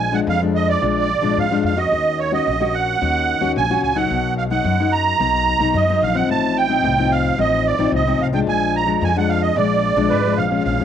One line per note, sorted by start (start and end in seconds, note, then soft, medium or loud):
0.00 0.19 A#1 medium
0.00 0.25 A#2 medium
0.00 0.16 G#5 medium
0.12 0.36 F3 medium
0.12 0.36 G#3 medium
0.12 0.36 D4 medium
0.12 0.20 F#5 medium
0.27 0.79 F2 medium
0.27 0.74 F2 loud
0.27 0.41 F5 medium
0.42 0.78 F3 medium
0.42 0.78 G#3 medium
0.42 0.79 D4 medium
0.56 0.69 D#5 medium
0.69 1.39 D5 loud
0.82 1.17 A#1 medium
0.82 1.34 A#2 medium
0.82 1.08 F3 medium
0.82 1.08 G#3 medium
0.82 1.08 D4 medium
1.22 1.34 A#1 medium
1.22 1.45 F3 medium
1.22 1.45 G#3 medium
1.22 1.46 D4 medium
1.37 1.89 F2 medium
1.37 1.62 G#2 medium
1.37 1.64 F5 medium
1.51 1.74 F3 medium
1.51 1.74 G#3 medium
1.51 1.74 D4 medium
1.64 1.88 F2 medium
1.64 1.79 F5 medium
1.77 2.27 A#3 medium
1.77 2.28 C#4 medium
1.77 2.28 F#4 medium
1.77 2.20 D#5 medium
1.92 2.38 D#2 medium
1.92 2.44 D#3 medium
2.19 2.32 C#5 medium
2.31 2.55 A#3 medium
2.31 2.55 C#4 medium
2.31 2.55 F#4 medium
2.31 2.75 D#5 medium
2.46 2.93 A#1 medium
2.46 2.98 A#2 medium
2.60 2.97 A#3 medium
2.60 2.97 C#4 medium
2.60 2.97 F#4 medium
2.74 3.52 F#5 loud
3.01 3.36 D#2 medium
3.01 3.53 D#3 medium
3.01 3.38 A#3 medium
3.01 3.38 C#4 medium
3.01 3.38 F#4 medium
3.41 3.53 D#2 medium
3.41 3.64 A#3 medium
3.41 3.64 C#4 medium
3.41 3.65 F#4 medium
3.56 3.79 A#1 loud
3.56 4.08 A#2 medium
3.56 3.81 G#5 loud
3.70 3.92 A#3 medium
3.70 3.93 C#4 medium
3.70 3.93 F#4 medium
3.82 4.06 C#2 medium
3.82 3.97 G#5 medium
3.95 4.46 F#3 medium
3.95 4.46 A#3 medium
3.95 4.46 D#4 medium
3.95 4.34 F#5 medium
4.10 4.57 B1 medium
4.10 4.62 B2 medium
4.38 4.44 F5 medium
4.50 4.74 F#3 medium
4.50 4.74 A#3 medium
4.50 4.74 D#4 medium
4.50 4.93 F#5 medium
4.64 5.11 F#2 loud
4.64 5.17 F#2 medium
4.80 5.16 F#3 medium
4.80 5.16 A#3 medium
4.80 5.16 D#4 medium
4.92 5.77 A#5 loud
5.19 5.54 B1 loud
5.19 5.71 B2 medium
5.19 5.56 F#3 medium
5.19 5.56 A#3 medium
5.19 5.57 D#4 medium
5.59 5.71 B1 medium
5.59 5.83 F#3 medium
5.59 5.83 A#3 medium
5.59 5.83 D#4 medium
5.74 5.97 F#2 medium
5.74 6.26 F#2 medium
5.74 6.03 D#5 medium
5.89 6.12 F#3 medium
5.89 6.12 A#3 medium
5.89 6.12 D#4 medium
6.01 6.24 A#1 medium
6.01 6.16 F5 medium
6.15 6.65 F3 medium
6.15 6.65 C4 medium
6.15 6.66 D#4 medium
6.15 6.29 F#5 medium
6.29 6.75 A1 medium
6.29 6.81 A2 medium
6.29 6.58 A5 medium
6.57 7.13 G5 loud
6.69 6.92 F3 medium
6.69 6.92 C4 medium
6.69 6.93 D#4 medium
6.83 7.30 C2 loud
6.83 7.35 A2 medium
6.98 7.34 F3 medium
6.98 7.34 C4 medium
6.98 7.34 D#4 medium
7.12 7.39 F5 medium
7.38 7.73 A1 medium
7.38 7.90 A2 medium
7.38 7.75 F3 medium
7.38 7.75 C4 medium
7.38 7.75 D#4 medium
7.38 7.67 D#5 loud
7.67 7.91 D5 medium
7.78 7.90 A1 medium
7.78 8.02 F3 medium
7.78 8.02 C4 medium
7.78 8.02 D#4 medium
7.92 8.16 C2 loud
7.92 8.44 A2 medium
7.92 8.22 D#5 medium
8.07 8.30 F3 medium
8.07 8.30 C4 medium
8.07 8.30 D#4 medium
8.19 8.43 C2 medium
8.19 8.27 F5 medium
8.33 8.83 F3 medium
8.33 8.84 G#3 medium
8.33 8.84 D4 medium
8.33 8.40 G5 medium
8.47 8.94 A#1 medium
8.47 8.99 A#2 medium
8.47 8.76 G#5 loud
8.76 9.04 A#5 medium
8.87 9.10 F3 medium
8.87 9.11 G#3 medium
8.87 9.11 D4 medium
9.01 9.48 F2 loud
9.01 9.54 F2 medium
9.01 9.17 G#5 medium
9.16 9.52 F3 medium
9.16 9.53 G#3 medium
9.16 9.53 D4 medium
9.16 9.31 F#5 medium
9.30 9.42 F5 medium
9.42 9.57 D#5 medium
9.56 9.91 A#1 loud
9.56 10.08 A#2 medium
9.56 9.93 F3 medium
9.56 9.93 G#3 medium
9.56 9.93 D4 medium
9.56 10.34 D5 medium
9.96 10.08 A#1 medium
9.96 10.20 F3 medium
9.96 10.20 G#3 medium
9.96 10.20 D4 medium
10.10 10.36 G#1 medium
10.10 10.63 F2 medium
10.10 10.39 B4 medium
10.25 10.48 F3 medium
10.25 10.48 G#3 medium
10.25 10.48 D4 medium
10.37 10.62 A#1 medium
10.37 10.63 F5 medium
10.51 10.79 F3 medium
10.51 10.79 G#3 medium
10.51 10.80 C#4 medium
10.64 10.77 A#1 medium
10.64 10.85 A#2 medium
10.64 10.85 F5 medium
10.80 10.85 F2 medium
10.80 10.85 F3 medium
10.80 10.85 G#3 medium
10.80 10.85 C#4 medium